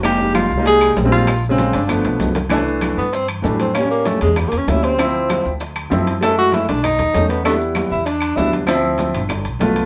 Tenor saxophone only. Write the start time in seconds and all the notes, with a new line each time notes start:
0.05 G4
0.35 F4
0.67 G#4
1.12 F4
1.74 D4
2.98 B3
3.13 C4
3.30 E3
3.45 G3
3.61 C4
3.75 C#4
3.91 A#3
4.06 A3
4.22 G#3
4.38 G3
4.48 A#3
4.58 C#4
4.68 E4
4.84 C4
6.23 A4
6.39 F#4
6.54 E4
6.69 D4
6.84 D#4
7.29 B3
7.45 A3
7.91 E4
8.06 D4
8.37 E4